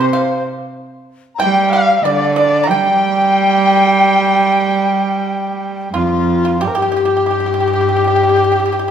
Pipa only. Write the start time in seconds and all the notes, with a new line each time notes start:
0.01 C5
0.13 F5
1.40 G5
1.73 F5
2.05 D5
2.36 D5
2.63 A#5
2.71 G5
5.94 F4
6.45 F4
6.61 G4
6.75 G4
6.82 G4
6.92 G4
6.97 G4
7.05 G4
7.17 G4
7.26 G4
7.31 G4
7.40 G4
7.46 G4
7.54 G4
7.60 G4
7.68 G4
7.73 G4
7.81 G4
7.89 G4
7.96 G4
8.04 G4
8.16 G4
8.23 G4
8.29 G4
8.36 G4
8.44 G4
8.52 G4
8.60 G4
8.65 G4
8.72 G4
8.79 G4